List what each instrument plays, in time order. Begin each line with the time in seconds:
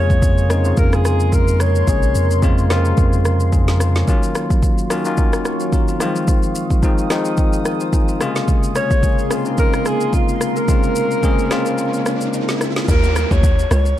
Already playing: sub bass F2, tine electric piano C3 C#3 G#3 A#3 F4, ambient pad G#4 A#4 C6, alto saxophone C#5
0.10 kick, shaker
0.22 kick, shaker
0.38 shaker
0.50 tine electric piano C#3 G#3 A#3 C4 D#4, cross-stick, shaker
0.65 tine electric piano C#3 G#3 A#3 C4 F4, shaker
0.77 sub bass F2, alto saxophone A#4, kick, shaker
0.93 alto saxophone G#4, cross-stick, shaker
1.05 alto saxophone G#4, cross-stick, shaker
1.20 shaker
1.32 alto saxophone A#4, kick, shaker
1.48 shaker
1.60 alto saxophone C#5, cross-stick, shaker
1.75 shaker
1.88 sub bass A#1, tine electric piano C3 C#3 G#3 A#3 G#4, kick, shaker
2.03 shaker
2.15 sub bass F2, shaker
2.31 shaker
2.42 tine electric piano C#3 G#3 A#3 C4 F4, kick, shaker
2.58 shaker
2.70 tine electric piano C3 G#3 A#3 C4 F4, cross-stick, snare, shaker
2.76 tine electric piano C#3
2.85 shaker
2.97 sub bass F2, kick, shaker
3.13 shaker
3.25 cross-stick, shaker
3.40 shaker
3.52 tine electric piano D#4 G#4, kick, shaker
3.68 tine electric piano F4 A#4, snare, shaker
3.80 tine electric piano F4 C5, cross-stick, shaker
3.96 tine electric piano G#4 C#5, snare, shaker
4.08 tine electric piano D#3 F#3 A#3 C#4 F4, ambient pad D#3 F#3 F5 C#6, kick, shaker
4.23 shaker
4.35 cross-stick, shaker
4.50 kick, shaker
4.63 kick, shaker
4.78 shaker
4.90 tine electric piano D#3 F#3 A#3 C#4 F4, cross-stick, shaker
5.05 tine electric piano D#3 F#3 A#3 C#4 F4, shaker
5.17 kick, shaker
5.33 cross-stick, shaker
5.45 cross-stick, shaker
5.60 tine electric piano C#4 F#4, shaker
5.73 tine electric piano F4 A#4, kick, shaker
5.88 tine electric piano C4 F4, shaker
6.00 tine electric piano D#3 F3 G#3 C4 F4, ambient pad G#4 D#6, cross-stick, shaker
6.16 shaker
6.28 kick, shaker
6.43 shaker
6.55 shaker
6.70 kick, shaker
6.83 tine electric piano D#3 F3 G#3 C4 D#4, kick, shaker
6.98 shaker
7.10 tine electric piano D#3 F3 G#3 C4 D#4, cross-stick, snare, shaker
7.25 shaker
7.37 kick, shaker
7.53 shaker
7.65 tine electric piano A#4 D#5, cross-stick, shaker
7.80 tine electric piano F4 C5, shaker
7.93 tine electric piano D#4 G#4, kick, shaker
8.08 tine electric piano C4 F4, shaker
8.20 tine electric piano C3 C#3 G#3 A#3 F4, ambient pad A#3 A#4 C6, cross-stick, shaker
8.36 snare, shaker
8.48 kick, riser, shaker
8.63 shaker
8.75 alto saxophone C#5, cross-stick, shaker
8.91 kick, shaker
9.03 kick, shaker
9.19 shaker
9.30 tine electric piano C#3 G#3 A#3 C4 F4, cross-stick, shaker
9.45 tine electric piano C#3 G#3 A#3 C4 D#4, shaker
9.58 alto saxophone A#4, kick, shaker
9.73 cross-stick, shaker
9.86 alto saxophone G#4, cross-stick, shaker
10.01 shaker
10.13 alto saxophone F4, kick, shaker
10.29 shaker
10.41 cross-stick, shaker
10.56 alto saxophone A#4, shaker
10.68 tine electric piano C3 G#3 A#3 C4 F4, kick, shaker
10.75 tine electric piano C#3
10.83 shaker
10.96 shaker
11.11 shaker
11.23 tine electric piano C#3 G#3 A#3 C4 G#4, kick, shaker
11.39 shaker
11.51 tine electric piano C#3 G#3 A#3 C4 F4, cross-stick, snare, shaker
11.66 shaker
11.78 shaker
11.94 shaker
12.06 cross-stick, shaker
12.21 shaker
12.33 shaker
12.49 snare, shaker
12.61 cross-stick, shaker
12.76 snare, shaker
12.88 log drum bass D#2, alto saxophone A#4, kick, downlifter, shaker
13.04 shaker
13.16 cross-stick, shaker
13.31 log drum bass D#2, alto saxophone C#5, kick, shaker
13.43 kick, shaker
13.59 shaker
13.71 log drum bass C#2, alto saxophone C#5, cross-stick, shaker
13.86 shaker